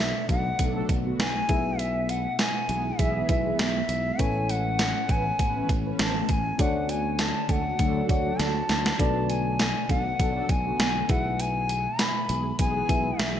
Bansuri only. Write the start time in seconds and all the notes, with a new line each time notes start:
Already playing: E5
0.30 F#5
1.20 G#5
1.79 E5
2.10 F#5
2.39 G#5
2.99 E5
3.30 E5
3.60 E5
4.20 G#5
4.50 F#5
5.11 G#5
6.00 A5
6.31 G#5
6.61 F#5
6.90 G#5
7.20 A5
7.51 F#5
8.10 F#5
8.40 A5
9.00 A5
9.30 G#5
9.90 F#5
10.50 G#5
11.10 F#5
11.41 G#5
12.01 B5
12.60 G#5
13.19 E5